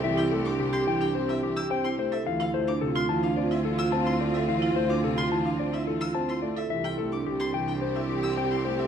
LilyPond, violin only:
\new Staff \with { instrumentName = "Violin" } { \time 4/4 \key d \minor \tempo 4 = 108 r16 g''16 r16 d'''16 r16 c'''16 r16 g''16 r16 e''16 r16 e'''16 r16 c'''16 r16 e''16 | r16 f''16 r16 d'''16 r16 c'''16 r16 f''16 r16 e''16 r16 e'''16 r16 c'''16 r16 e''16 | r16 f''16 r16 d'''16 r16 c'''16 r16 f''16 r16 e''16 r16 e'''16 r16 c'''16 r16 e''16 | r16 g''16 r16 d'''16 r16 c'''16 r16 g''16 r16 e''16 r16 e'''16 r16 c'''16 r16 e''16 | }